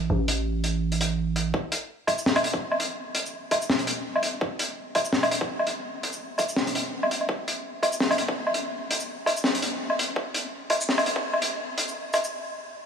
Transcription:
0.10 808-style bass A1
0.28 closed hi-hat
0.64 closed hi-hat
0.92 closed hi-hat
1.01 closed hi-hat
1.36 closed hi-hat
1.54 kick
1.72 closed hi-hat
2.07 kick, closed hi-hat, low woodblock
2.18 shaker
2.26 snare
2.36 closed hi-hat, low woodblock
2.44 closed hi-hat
2.54 kick
2.72 low woodblock
2.80 closed hi-hat
3.15 closed hi-hat
3.26 shaker
3.51 kick, closed hi-hat, low woodblock
3.62 shaker
3.70 snare
3.79 closed hi-hat
3.87 closed hi-hat
4.16 low woodblock
4.23 closed hi-hat
4.41 kick
4.59 closed hi-hat
4.95 kick, closed hi-hat, low woodblock
5.05 shaker
5.13 snare
5.23 closed hi-hat, low woodblock
5.31 closed hi-hat
5.41 kick
5.59 low woodblock
5.67 closed hi-hat
6.03 closed hi-hat
6.12 shaker
6.38 kick, closed hi-hat, low woodblock, shaker
6.49 shaker
6.56 snare
6.67 closed hi-hat
6.75 closed hi-hat
7.03 low woodblock
7.11 closed hi-hat
7.21 low woodblock
7.29 kick
7.48 closed hi-hat
7.83 kick, closed hi-hat, low woodblock
7.92 shaker
8.00 snare
8.11 closed hi-hat, low woodblock
8.18 closed hi-hat
8.28 kick
8.47 low woodblock
8.54 closed hi-hat
8.91 closed hi-hat
9.00 shaker
9.26 kick, closed hi-hat, low woodblock
9.37 shaker
9.44 snare
9.55 closed hi-hat
9.62 closed hi-hat
9.90 low woodblock
9.99 closed hi-hat
10.16 kick
10.34 closed hi-hat
10.70 kick, closed hi-hat, low woodblock
10.81 shaker
10.89 snare
10.98 closed hi-hat, low woodblock
11.06 closed hi-hat
11.16 kick
11.34 low woodblock
11.42 closed hi-hat
11.78 closed hi-hat
11.88 shaker
12.13 kick, closed hi-hat, low woodblock, shaker
12.24 shaker

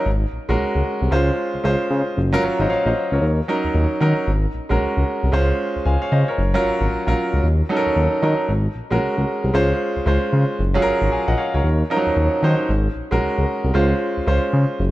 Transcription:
0.06 analog synth bass G#1
0.32 analog synth bass A#1
0.49 analog synth bass A#1, grand piano G#3 C#4 F#4 A#4
0.59 analog synth bass C#2
0.75 analog synth bass C#2
1.01 analog synth bass C2
1.11 analog synth bass C#2, grand piano G#3 C#4 F4 C5
1.54 analog synth bass C#2
1.64 analog synth bass C#2, grand piano G#3 C#4 F4 C5
1.90 analog synth bass C#3
2.17 analog synth bass F#1
2.33 grand piano F#3 C#4 F4 A#4
2.43 analog synth bass G#1, grand piano A#4 C#5
2.59 analog synth bass G#1, grand piano C5 D#5
2.69 analog synth bass A#1, grand piano C#5 F5
2.85 analog synth bass A#1, grand piano C5 D#5
3.12 analog synth bass C#2, grand piano A#4 C#5
3.22 analog synth bass D#2
3.48 grand piano F#3 C#4 D#4 A#4
3.64 analog synth bass D#2
3.74 analog synth bass D#2
4.00 analog synth bass D#3, grand piano F#3 C#4 D#4 A#4
4.27 analog synth bass G#1
4.54 analog synth bass A#1
4.69 analog synth bass A#1, grand piano G#3 C#4 F#4 A#4
4.81 analog synth bass C#2
4.97 analog synth bass C#2
5.23 analog synth bass C2
5.32 analog synth bass C#2, grand piano G#3 C#4 F4 C5
5.76 analog synth bass C#2
5.86 analog synth bass C#2, grand piano F5 G#5
6.02 grand piano C#5 F5
6.12 analog synth bass C#3, grand piano C5 D#5
6.28 grand piano A#4 C#5
6.38 analog synth bass F#1
6.54 grand piano F#3 C#4 F4 A#4
6.65 analog synth bass G#1
6.81 analog synth bass G#1
6.91 analog synth bass A#1
7.07 analog synth bass A#1, grand piano F#3 C#4 F4 A#4
7.33 analog synth bass C#2
7.43 analog synth bass D#2
7.69 grand piano F#3 C#4 D#4 A4
7.77 grand piano A#4
7.86 analog synth bass D#2
7.96 analog synth bass D#2
8.22 analog synth bass D#3, grand piano F#3 C#4 D#4 A#4
8.49 analog synth bass G#1
8.75 analog synth bass A#1
8.91 analog synth bass A#1, grand piano G#3 C#4 F#4 A#4
9.01 analog synth bass C#2
9.17 analog synth bass C#2
9.44 analog synth bass C2
9.54 analog synth bass C#2, grand piano G#3 C#4 F4 C5
9.96 analog synth bass C#2
10.06 analog synth bass C#2, grand piano G#3 C#4 F4 C5
10.33 analog synth bass C#3
10.59 analog synth bass F#1
10.74 grand piano F#3 C#4 F4 G#4
10.82 analog synth bass G#1, grand piano A#4
11.02 analog synth bass G#1
11.11 analog synth bass A#1, grand piano F5 G#5
11.28 analog synth bass A#1, grand piano D#5 F#5
11.38 grand piano C#5 F5
11.54 analog synth bass C#2, grand piano A#4 C#5
11.64 analog synth bass D#2
11.90 grand piano F3 C#4 D#4 A#4
11.96 grand piano F#3
12.06 analog synth bass D#2
12.17 analog synth bass D#2
12.42 analog synth bass D#3, grand piano F#3 C#4 D#4 C5
12.69 analog synth bass G#1
12.96 analog synth bass A#1
13.11 analog synth bass A#1, grand piano G#3 C#4 F#4 A#4
13.22 analog synth bass C#2
13.38 analog synth bass C#2
13.64 analog synth bass C2
13.74 analog synth bass C#2, grand piano G#3 C#4 F4 C5
14.17 analog synth bass C#2
14.26 analog synth bass C#2, grand piano G#3 C#4 F4 C5
14.53 analog synth bass C#3
14.79 analog synth bass F#1

